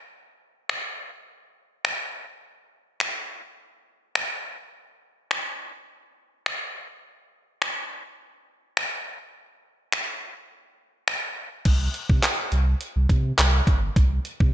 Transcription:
0.69 finger snap
1.85 finger snap
3.00 finger snap
4.15 finger snap
5.31 finger snap
6.46 finger snap
7.62 finger snap
8.77 finger snap
9.93 finger snap
11.08 finger snap
11.65 sub bass C2, kick, closed hi-hat, crash
11.94 closed hi-hat
12.09 sub bass C3, kick
12.23 clap, closed hi-hat
12.52 sub bass C2, closed hi-hat
12.81 closed hi-hat
12.96 sub bass C2
13.09 sub bass C3, kick, closed hi-hat
13.38 sub bass C2, clap, closed hi-hat
13.67 sub bass G1, kick, closed hi-hat
13.96 sub bass C2, kick, closed hi-hat
14.25 closed hi-hat
14.40 sub bass C3, kick

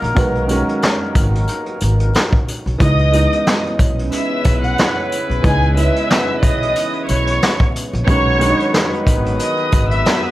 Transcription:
Already playing: horn section F#3 A#3 D#4 A#4
0.02 upright bass A#1, closed hi-hat
0.15 upright bass B1, upright piano D#3 F#3 G#3 B3, kick, closed hi-hat, sleigh bells
0.35 closed hi-hat
0.47 upright piano D#3 F#3 G#3 C#4, closed hi-hat, sleigh bells
0.69 closed hi-hat
0.83 snare, closed hi-hat, sleigh bells
1.15 upright bass G#1, kick, closed hi-hat, sleigh bells
1.35 closed hi-hat
1.48 closed hi-hat, sleigh bells
1.66 closed hi-hat
1.81 upright bass G#1, closed hi-hat, sleigh bells
2.00 closed hi-hat
2.15 snare, closed hi-hat, sleigh bells
2.33 kick
2.48 closed hi-hat, sleigh bells
2.66 upright bass B1, closed hi-hat
2.78 upright bass C#2, analog synth pad C#3 E3 G#3 B3 C#4, upright piano E3 G#3 B3 D#4, violin section D#5 D#6, kick, closed hi-hat, sleigh bells
2.99 closed hi-hat
3.12 upright piano E3 G#3 B3 D#4, closed hi-hat, sleigh bells
3.32 closed hi-hat
3.47 snare, closed hi-hat, sleigh bells
3.66 closed hi-hat
3.79 upright bass B1, kick, closed hi-hat, sleigh bells
3.99 closed hi-hat
4.11 horn section G#3 B3 E4 B4, violin section E5 E6, closed hi-hat, sleigh bells
4.45 upright bass B1, kick, closed hi-hat, sleigh bells
4.63 violin section F#5 F#6, closed hi-hat
4.78 snare, closed hi-hat, sleigh bells
5.12 closed hi-hat, sleigh bells
5.29 upright bass B1, closed hi-hat
5.42 upright bass C#2, upright piano E3 G#3 B3 D#4, analog synth pad B3, violin section G#4 G#5, kick, closed hi-hat, sleigh bells
5.62 closed hi-hat
5.74 upright piano E3 G#3 B3 E4, violin section E5 E6, closed hi-hat, sleigh bells
5.96 closed hi-hat
6.11 snare, closed hi-hat, sleigh bells
6.43 upright bass B1, violin section D#5 D#6, kick, closed hi-hat, sleigh bells
6.63 closed hi-hat
6.76 closed hi-hat, sleigh bells
6.93 closed hi-hat
7.08 upright bass B1, violin section C#5 C#6, closed hi-hat, sleigh bells
7.27 closed hi-hat
7.42 snare, closed hi-hat, sleigh bells
7.60 kick, closed hi-hat
7.76 closed hi-hat, sleigh bells
7.93 upright bass A#1, closed hi-hat
8.06 upright bass B1, upright piano D#3 F#3 G#3, horn section D#3 F#3 B3 B4, analog synth pad D#3 F#3 G#3 B3 F#4, violin section C#5 C#6, kick, closed hi-hat, sleigh bells
8.10 upright piano C#4
8.39 upright piano D#3 F#3 G#3 D4, closed hi-hat, sleigh bells
8.49 upright piano D#4
8.60 closed hi-hat
8.74 snare, closed hi-hat, sleigh bells
8.93 closed hi-hat
9.07 upright bass G#1, kick, closed hi-hat, sleigh bells
9.26 closed hi-hat
9.39 violin section D#5 D#6, closed hi-hat, sleigh bells
9.57 closed hi-hat
9.72 upright bass G#1, kick, closed hi-hat, sleigh bells
9.91 violin section E5 E6, closed hi-hat
10.06 snare, closed hi-hat, sleigh bells
10.25 closed hi-hat

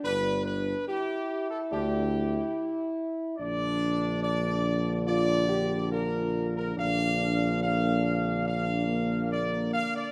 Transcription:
Already playing: french horn section D4
0.04 tuba G1, trombone section D3 D4, trumpet section B4
0.45 trumpet section B4
0.88 french horn section E4, trumpet section G4
1.50 trumpet section A4
1.71 tuba D2, trombone section D3 D4, trumpet section G4
3.39 tuba A#1, trombone section D3 D4, french horn section D4, trumpet section D5
4.23 trumpet section D5
5.06 french horn section F4, trumpet section D5
5.49 french horn section G4
5.91 french horn section F4, trumpet section A#4
6.56 trumpet section A#4
6.76 tuba A#1, trombone section D3 D4, french horn section D4, trumpet section F5
7.62 french horn section A#3, trumpet section F5
8.04 french horn section C4
8.47 french horn section D4, trumpet section F5
8.87 french horn section A#3
9.32 trumpet section D5
9.73 trumpet section F5
9.96 trumpet section D5

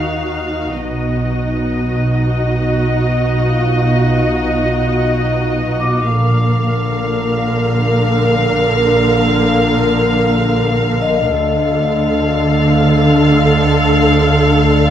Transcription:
Already playing: double bass section D#2, cello section D#3, viola section D#4 F#4, violin section F5
0.82 double bass section B1, cello section B2, viola section D#4 F#4, violin section D#5
3.48 vibraphone F4 F5
5.80 vibraphone D6
6.11 double bass section A#1, cello section A#2, viola section D3 A#4, violin section F5
11.01 vibraphone D#5
11.34 double bass section D2, cello section D3, viola section D3 A4, violin section F5
14.69 vibraphone D4 D5

